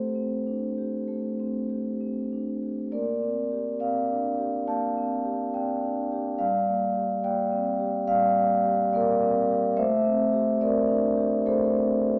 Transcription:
Already playing: A3 C4 G4 A4 C5
0.15 C4
0.46 D4
0.78 G4
1.08 A3
1.40 C4
1.70 G4
2.01 C4
2.32 D4
2.63 G4
2.92 A#3 A#4 D5
3.22 C4
3.52 G4
3.80 C4 D5 F5
4.10 D4
4.39 G4
4.68 A#3 F5 A5
4.97 C4
5.25 G4
5.54 C4 D5 G5
5.83 D4
6.12 G4
6.39 G3 D5 F5
6.68 A#3
6.96 G4
7.23 A#3 D5 G5
7.52 C4
7.79 G4
8.08 G3 D5 F5
8.36 A#3
8.64 G4
8.93 A#3 A#4 D5
9.23 C4
9.49 G4
9.77 A3 C5 E5
10.05 C4
10.33 G4
10.61 C4 A#4 D5
10.88 D4
11.17 G4
11.46 A3 A4 C5
11.77 C4
12.07 G4

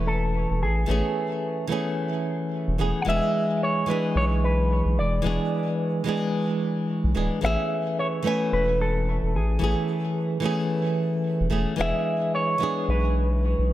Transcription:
Already playing: E1 E3 A3 B3 C#4 G#5
0.07 A4
0.51 E1
0.62 A1 G#4
0.86 A1 E3 A3 B3 C#4
0.91 G#4
1.67 E3 A3 B3 C#4
1.72 G#4
2.68 E1
2.78 E1 E3 A3 B3 C#4 G#4
3.02 E3 F#5
3.06 E1 G#3 B3 D4 G#4 E5
3.63 C#5
3.86 E3 G#3 B3 D4 B4
3.91 G#4
4.15 B1 C#5
4.44 B4
4.85 B1
4.97 E1 D5
5.22 E1 E3 G#3 B3 D4
5.26 G#4
6.04 E3 G#3 B3 D4
6.09 G#4
7.04 B1
7.15 D1 E3 G#3 B3 D4 G#4
7.41 A1 E3 A3 B3 C#4 E5
7.46 G#4
7.99 C#5
8.23 E3 A3 B3 C#4
8.27 B4 G#5
8.53 E1 B4
8.81 A4
9.23 E1
9.34 A1 G#4
9.59 A1 E3 A3 B3 C#4
9.64 G#4
10.40 E3 A3 B3
10.44 C#4 G#4
11.40 E1
11.50 E1 E3 A3 B3 C#4 G#4
11.76 E1 E3 G#3 B3 D4
11.81 G#4 E5
12.35 C#5
12.58 E3 G#3 B3 D4
12.63 G#4
12.88 B1 B4
13.58 B1
13.70 E1

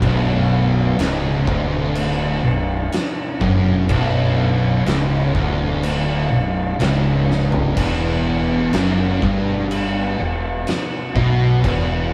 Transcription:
Already playing: B3 D4
0.00 B0 B1 E4, kick, crash
0.97 C#1 C#2, snare, crash
1.46 D1 D2, kick
1.95 crash
2.42 B0 B1
2.92 snare, crash
3.40 F#1 F#2, kick
3.88 B0 B1, kick, crash
4.84 C#1 C#2, crash
4.88 snare
5.33 D1 D2, kick
5.83 crash
6.31 B0 B1
6.80 C#1 C#2, snare, crash
7.31 snare
7.52 floor tom
7.76 E1 E2 E3 F#4, kick, crash
8.73 F#1 F#2, snare, crash
9.21 G1 G2, kick
9.71 crash
10.18 E1 E2
10.67 snare, crash
11.15 B1 B2, kick
11.63 E1 E2, kick, crash

